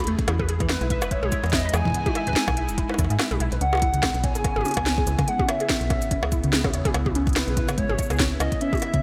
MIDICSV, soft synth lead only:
0, 0, Header, 1, 2, 480
1, 0, Start_track
1, 0, Key_signature, 4, "minor"
1, 0, Tempo, 416667
1, 320, Time_signature, 4, 2, 24, 8
1, 10396, End_track
2, 0, Start_track
2, 0, Title_t, "Soft synth lead"
2, 0, Program_c, 0, 80
2, 800, Note_on_c, 0, 71, 90
2, 1281, Note_on_c, 0, 73, 95
2, 1298, Note_off_c, 0, 71, 0
2, 1761, Note_on_c, 0, 75, 106
2, 1778, Note_off_c, 0, 73, 0
2, 2001, Note_on_c, 0, 80, 116
2, 2018, Note_off_c, 0, 75, 0
2, 3681, Note_off_c, 0, 80, 0
2, 4160, Note_on_c, 0, 78, 110
2, 4880, Note_on_c, 0, 80, 124
2, 4897, Note_off_c, 0, 78, 0
2, 6080, Note_on_c, 0, 78, 105
2, 6097, Note_off_c, 0, 80, 0
2, 6320, Note_on_c, 0, 76, 90
2, 6337, Note_off_c, 0, 78, 0
2, 7760, Note_off_c, 0, 76, 0
2, 8480, Note_on_c, 0, 71, 86
2, 8960, Note_on_c, 0, 73, 91
2, 8978, Note_off_c, 0, 71, 0
2, 9440, Note_off_c, 0, 73, 0
2, 9680, Note_on_c, 0, 75, 86
2, 9903, Note_off_c, 0, 75, 0
2, 9920, Note_on_c, 0, 76, 106
2, 10396, Note_off_c, 0, 76, 0
2, 10396, End_track
0, 0, End_of_file